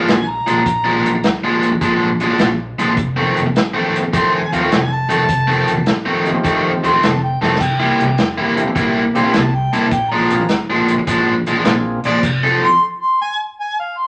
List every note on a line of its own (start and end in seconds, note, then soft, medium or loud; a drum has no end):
0.00 0.14 A#2 medium
0.00 0.14 F3 medium
0.00 0.14 G#3 loud
0.00 0.14 D4 medium
0.08 0.41 A#1 medium
0.08 0.31 G#5 medium
0.08 snare loud
0.08 closed hi-hat medium
0.29 1.41 A#5 loud
0.46 0.63 A#1 medium
0.46 0.59 A#2 medium
0.46 0.59 F3 medium
0.46 0.60 G#3 medium
0.46 0.60 D4 medium
0.46 closed hi-hat medium
0.66 0.99 A#1 medium
0.66 kick loud
0.66 closed hi-hat medium
0.84 1.08 A#2 medium
0.84 1.08 F3 medium
0.84 1.08 G#3 medium
0.84 1.07 D4 medium
1.06 1.21 A#1 medium
1.06 closed hi-hat medium
1.15 muted overdriven electric guitar stroke soft
1.24 1.73 D2 medium
1.24 snare loud
1.24 closed hi-hat medium
1.44 1.67 A#2 medium
1.44 1.67 F3 medium
1.44 1.66 G#3 loud
1.44 1.66 D4 medium
1.63 closed hi-hat medium
1.72 muted overdriven electric guitar stroke soft
1.81 2.14 G#1 medium
1.81 2.07 A#2 medium
1.81 2.07 F3 medium
1.81 2.07 G#3 medium
1.81 2.08 D4 medium
1.81 kick loud
1.81 closed hi-hat medium
2.20 2.37 G#1 medium
2.20 2.30 A#2 medium
2.20 2.30 F3 medium
2.20 2.29 G#3 medium
2.20 2.28 D4 medium
2.20 closed hi-hat soft
2.29 2.46 A#2 medium
2.29 2.46 F3 medium
2.29 2.46 G#3 medium
2.29 2.45 D4 loud
2.39 2.73 A#1 medium
2.39 snare loud
2.39 closed hi-hat medium
2.78 2.94 A#1 medium
2.78 2.91 A#2 medium
2.78 2.91 F3 medium
2.78 2.91 G#3 medium
2.78 2.92 D4 medium
2.78 snare soft
2.78 closed hi-hat medium
2.97 3.30 F1 medium
2.97 kick loud
2.97 closed hi-hat medium
3.16 3.40 F2 medium
3.16 3.39 D#3 medium
3.16 3.39 A3 medium
3.16 3.39 C4 medium
3.36 3.52 F1 medium
3.36 closed hi-hat medium
3.46 muted overdriven electric guitar stroke soft
3.55 4.03 A1 medium
3.55 snare loud
3.55 closed hi-hat medium
3.74 3.98 F2 medium
3.74 3.97 D#3 medium
3.74 3.97 A3 medium
3.74 3.97 C4 loud
3.96 closed hi-hat medium
4.03 muted overdriven electric guitar stroke soft
4.13 4.46 D#2 medium
4.13 4.38 F2 medium
4.13 4.39 D#3 medium
4.13 4.39 A3 medium
4.13 4.39 C4 medium
4.13 4.33 C6 medium
4.13 kick loud
4.13 closed hi-hat medium
4.35 4.55 G#5 medium
4.53 4.68 D#2 medium
4.53 4.61 F2 medium
4.53 4.61 D#3 medium
4.53 4.60 A3 medium
4.53 4.60 C4 medium
4.53 4.71 F5 medium
4.53 closed hi-hat medium
4.61 4.77 F2 medium
4.61 4.77 D#3 medium
4.61 4.77 A3 loud
4.61 4.76 C4 medium
4.71 5.04 F1 medium
4.71 4.90 G#5 medium
4.71 snare loud
4.71 closed hi-hat medium
4.93 6.04 A5 loud
5.09 5.27 F1 medium
5.09 5.22 F2 medium
5.09 5.22 D#3 medium
5.09 5.22 A3 medium
5.09 5.22 C4 medium
5.09 closed hi-hat medium
5.29 5.62 F1 medium
5.29 kick medium
5.29 closed hi-hat medium
5.47 5.71 F2 medium
5.47 5.71 D#3 medium
5.47 5.71 A3 medium
5.47 5.70 C4 loud
5.68 5.84 F1 medium
5.68 closed hi-hat medium
5.77 muted overdriven electric guitar stroke soft
5.86 6.36 A1 medium
5.86 snare loud
5.86 closed hi-hat medium
6.06 6.29 F2 medium
6.06 6.29 D#3 medium
6.06 6.28 A3 medium
6.06 6.28 C4 loud
6.24 6.98 A3 medium
6.24 6.98 C4 medium
6.24 6.98 D#4 medium
6.24 6.98 F4 medium
6.24 6.99 G4 medium
6.24 closed hi-hat medium
6.35 muted overdriven electric guitar stroke soft
6.44 6.78 D#2 medium
6.44 6.69 F2 medium
6.44 6.70 D#3 medium
6.44 6.70 A3 medium
6.44 6.70 C4 medium
6.44 kick loud
6.44 closed hi-hat medium
6.83 7.00 D#2 medium
6.83 6.92 F2 medium
6.83 6.92 D#3 medium
6.83 6.92 A3 medium
6.83 6.91 C4 medium
6.83 7.07 C6 medium
6.83 closed hi-hat medium
6.93 7.09 F2 medium
6.93 7.08 D#3 medium
6.93 7.08 A3 medium
6.93 7.08 C4 medium
7.03 7.35 F1 medium
7.03 7.22 A5 medium
7.03 snare loud
7.03 closed hi-hat medium
7.23 7.41 G5 medium
7.41 7.57 F1 medium
7.41 7.54 F2 medium
7.41 7.54 D#3 medium
7.41 7.54 A3 medium
7.41 7.54 C4 medium
7.41 7.63 A5 medium
7.41 snare medium
7.56 snare medium
7.60 7.93 C2 medium
7.60 7.79 G5 medium
7.60 kick loud
7.60 closed hi-hat medium
7.60 crash medium
7.80 8.03 C3 medium
7.80 8.03 G3 medium
7.80 8.02 A#3 medium
7.80 8.02 E4 medium
7.80 8.36 G5 medium
7.99 8.15 C2 medium
7.99 closed hi-hat medium
8.08 muted overdriven electric guitar stroke soft
8.18 8.67 E2 medium
8.18 snare loud
8.18 closed hi-hat medium
8.38 8.61 C3 medium
8.38 8.60 G3 medium
8.38 8.60 A#3 medium
8.38 8.60 E4 medium
8.55 8.73 A#3 medium
8.55 8.73 C4 medium
8.55 8.73 D4 medium
8.55 8.74 E4 medium
8.55 8.74 G4 medium
8.55 closed hi-hat medium
8.68 muted overdriven electric guitar stroke soft
8.75 9.09 A#1 medium
8.75 9.01 C3 medium
8.75 9.01 G3 medium
8.75 9.02 A#3 medium
8.75 9.02 E4 medium
8.75 kick loud
8.75 closed hi-hat medium
9.14 9.31 A#1 medium
9.14 9.24 C3 medium
9.14 9.24 G3 medium
9.14 9.31 A#3 medium
9.14 9.24 A#3 medium
9.14 9.31 C4 medium
9.14 9.32 D4 medium
9.14 9.32 E4 medium
9.14 9.23 E4 medium
9.14 9.32 G4 medium
9.14 9.36 C6 medium
9.14 closed hi-hat medium
9.24 9.40 C3 medium
9.24 9.40 G3 medium
9.24 9.40 A#3 medium
9.24 9.39 E4 loud
9.34 9.67 C2 medium
9.34 9.57 A5 medium
9.34 snare loud
9.34 closed hi-hat medium
9.55 9.75 G5 medium
9.73 9.89 A1 medium
9.73 9.85 C3 medium
9.73 9.85 G3 medium
9.73 9.85 A#3 medium
9.73 9.86 E4 medium
9.73 9.92 A5 medium
9.73 snare soft
9.73 closed hi-hat medium
9.91 10.24 A#1 medium
9.91 10.12 G5 medium
9.91 kick loud
9.91 closed hi-hat medium
10.11 10.34 A#2 medium
10.11 10.34 F3 medium
10.11 10.34 G#3 medium
10.11 10.34 D4 medium
10.11 10.67 A#5 medium
10.30 10.47 A#1 medium
10.30 10.47 A#3 medium
10.30 10.47 C4 medium
10.30 10.47 D4 medium
10.30 10.48 F4 medium
10.30 10.48 G#4 medium
10.30 closed hi-hat medium
10.41 muted overdriven electric guitar stroke soft
10.49 10.98 D2 medium
10.49 snare medium
10.49 closed hi-hat medium
10.70 10.92 A#2 medium
10.70 10.92 F3 medium
10.70 10.92 G#3 medium
10.70 10.92 D4 medium
10.88 closed hi-hat medium
10.99 muted overdriven electric guitar stroke soft
11.07 11.40 G#1 medium
11.07 11.33 A#2 medium
11.07 11.33 F3 medium
11.07 11.33 G#3 medium
11.07 11.33 D4 loud
11.07 kick medium
11.07 closed hi-hat medium
11.46 11.62 G#1 medium
11.46 11.56 A#2 medium
11.46 11.56 F3 medium
11.46 11.56 G#3 medium
11.46 11.56 D4 medium
11.46 closed hi-hat medium
11.57 11.72 A#2 medium
11.57 11.72 F3 medium
11.57 11.72 G#3 loud
11.57 11.72 D4 loud
11.64 11.97 A#1 loud
11.64 12.00 A#3 medium
11.64 12.00 C4 medium
11.64 12.00 D4 medium
11.64 12.00 F4 medium
11.64 12.01 G#4 medium
11.64 snare loud
11.64 closed hi-hat medium
12.04 12.19 A#1 medium
12.04 12.17 A#2 medium
12.04 12.17 F3 medium
12.04 12.17 G#3 medium
12.04 12.18 D4 medium
12.04 12.23 D5 loud
12.04 closed hi-hat medium
12.22 12.55 F1 medium
12.22 kick loud
12.22 closed hi-hat medium
12.22 crash medium
12.43 12.66 F3 medium
12.43 12.66 C4 medium
12.43 12.66 D#4 medium
12.43 12.65 A4 loud
12.64 12.81 C6 loud
13.02 13.20 C6 medium
13.21 13.39 G#5 loud
13.60 13.78 G#5 medium
13.80 14.00 F5 medium
13.98 14.07 C6 medium